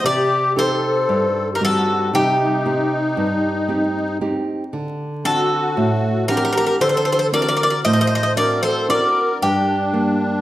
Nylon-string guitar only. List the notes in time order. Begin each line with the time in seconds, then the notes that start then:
0.04 C3
0.56 C4 D#4 G4
1.09 G2
1.60 G3 C4 D#4
2.13 C3
2.65 C4 D#4 G4
3.17 G2
3.68 C4 D#4 G4
4.21 C4 D#4 G4
4.73 D3
5.24 C4 D4 F#4
5.77 A2
6.29 C4 D4 F#5
6.80 D3
7.32 C4 D4 F#4
7.85 A2
8.36 C4 D4 F#4
8.89 C4 D4 F#4
9.42 G2
9.93 G3 A#3 D4